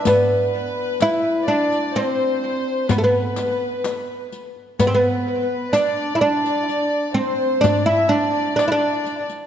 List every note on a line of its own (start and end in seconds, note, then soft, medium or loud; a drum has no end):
0.05 1.04 B3 medium
0.05 1.44 B4 medium
0.05 riq medium
0.05 darbuka dum medium
0.54 darbuka ka soft
1.00 1.48 E4 loud
1.00 riq soft
1.00 darbuka tek medium
1.48 1.97 D4 medium
1.48 1.95 D5 medium
1.72 riq soft
1.72 darbuka ka soft
1.94 2.90 C4 medium
1.94 2.89 C5 medium
1.94 riq soft
2.42 darbuka ka soft
2.89 2.97 B3 medium
2.89 3.03 B4 medium
2.89 riq medium
2.89 darbuka dum loud
2.98 3.03 A3 medium
3.04 4.28 B3 medium
3.04 4.28 B4 medium
3.36 riq soft
3.36 darbuka tek medium
3.84 riq soft
3.84 darbuka tek medium
4.32 riq soft
4.32 darbuka ka soft
4.56 darbuka ka soft
4.79 4.87 B3 medium
4.79 4.91 B4 medium
4.79 riq medium
4.79 darbuka dum medium
4.87 4.94 C4 medium
4.93 5.77 B3 medium
4.93 5.70 B4 medium
5.28 darbuka ka soft
5.73 6.15 D4 medium
5.73 6.21 D5 medium
5.73 riq medium
5.73 darbuka tek medium
6.15 6.21 E4 medium
6.21 7.19 D4 medium
6.21 7.12 D5 medium
6.45 riq soft
6.45 darbuka ka soft
6.69 riq soft
7.14 7.64 C4 medium
7.14 7.64 C5 medium
7.61 7.85 D4 medium
7.61 7.88 D5 medium
7.61 riq medium
7.61 darbuka dum loud
7.86 8.09 E4 medium
7.86 8.10 E5 medium
8.09 8.55 D4 medium
8.09 8.58 D5 medium
8.09 darbuka tek medium
8.56 8.64 D4 medium
8.56 8.71 D5 medium
8.56 riq medium
8.56 darbuka tek medium
8.68 8.71 E4 medium
8.72 9.25 D4 medium
8.72 9.25 D5 medium
9.06 riq soft
9.06 darbuka ka soft
9.30 riq soft
9.30 darbuka ka soft